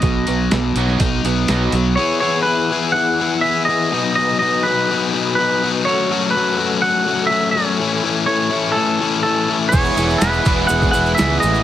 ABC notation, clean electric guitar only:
X:1
M:4/4
L:1/16
Q:1/4=124
K:E
V:1 name="Clean electric guitar"
d12- d2 z2 | c2 c2 B4 f4 e2 d2- | d2 d2 d2 B6 B3 z | c4 B4 f4 e2 c2- |
c4 c4 A4 A3 z | c4 B4 f2 f2 e2 d2 |]